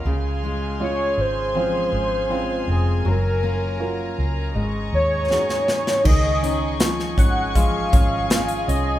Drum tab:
CC |----------------|----------------|x---------------|
HH |----------------|----------------|--x-x-x-x-x-xxx-|
SD |----------------|------------oooo|----oo------o---|
BD |----------------|----------------|o-----o-o-o-----|